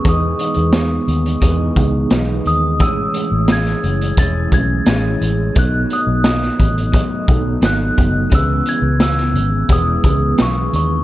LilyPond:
<<
  \new Staff \with { instrumentName = "Glockenspiel" } { \time 4/4 \key cis \minor \tempo 4 = 87 dis'''2 r4. dis'''8 | e'''4 gis'''4 a'''8 gis'''4. | fis'''8 dis'''4. r4 fis'''4 | e'''8 gis'''8 e'''4 dis'''4 cis'''8 cis'''8 | }
  \new Staff \with { instrumentName = "Tine electric piano" } { \time 4/4 \key cis \minor <e b dis' gis'>4. r4 <e b dis' gis'>4 r8 | <e a cis' gis'>4. r4 <e a cis' gis'>4 r8 | <fis b dis'>4. r4 <fis b dis' a'>4 r8 | <e b cis'>4. r4 <e b cis' gis'>4 r8 | }
  \new Staff \with { instrumentName = "Clean electric guitar" } { \time 4/4 \key cis \minor <gis b dis'>2 <e gis b dis'>4 <gis b dis'>4 | <a, gis cis' e'>4 <a, gis cis' e'>4 <a, gis cis' e'>4 <a, gis cis' e'>4 | <b, fis a dis'>4 <b, fis a dis'>4 <b, fis a dis'>4 <b, fis a dis'>4 | <cis gis b e'>2 <cis gis b e'>4 <cis gis b e'>4 | }
  \new Staff \with { instrumentName = "Fingered electric bass" } { \clef bass \time 4/4 \key cis \minor e,8 r16 e,8. dis,8 e,8 cis,8 b,,8 dis,8 | a,,8 r16 a,,8. fis,,8 e,,8 b,,8 a,,8 a,,8 | b,,8 r16 b,,8. a,,8. r16 b,,8 gis,,8 fis,,8 | cis,8 r16 cis,8. gis,,8 e,,8 cis,8 b,,8 dis,8 | }
  \new DrumStaff \with { instrumentName = "Drums" } \drummode { \time 4/4 <hh bd>8 hh16 hh16 <hh sn>8 hh16 hh16 <hh bd>8 <hh bd>8 <hh sn>8 hh8 | <hh bd>8 hh8 <hh sn>16 sn16 hh16 hh16 <hh bd>8 <hh bd>8 <hh sn>8 hh8 | <hh bd>8 hh8 <hh sn>16 sn16 <hh bd>16 hh16 <hh bd>8 <hh bd>8 <hh sn>8 <hh bd>8 | <hh bd>8 hh8 <hh sn>16 sn16 hh8 <hh bd>8 <hh bd>8 <hh sn>8 hh8 | }
>>